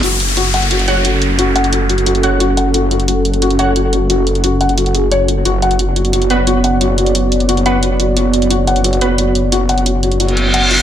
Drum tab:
HH |x-xxx-xxxxx-x-x-|x-xxx-xxxxx-x-x-|x-xxx-xxxxx-x-x-|x-xxx-xxxxx-x-x-|

HH |x-xxx-xxxxx-x-x-|x-xxx-xxxxx-x-x-|x-xxx-xxxxx-x-x-|x-xxx-xxxxx-x-x-|